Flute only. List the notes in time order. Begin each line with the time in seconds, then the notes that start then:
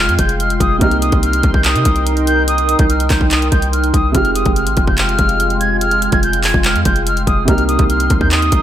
Already playing: F6
0.19 G6
0.40 F6
0.60 D#6
0.81 F6
1.02 D#6
1.23 F6
1.54 G6
1.65 D#6
2.27 G6
2.48 D#6
2.79 G6
2.89 F6
3.10 G6
3.31 D#6
3.52 G6
3.72 F6
3.94 D#6
4.14 F6
4.35 D#6
4.56 F6
4.88 G6
4.98 F6
5.60 G#6
5.81 F6
6.13 G#6
6.23 G6
6.44 G#6
6.65 F6
6.86 G6
7.07 F6
7.27 D#6
7.48 F6
7.69 D#6
7.90 F6
8.21 G6
8.31 D#6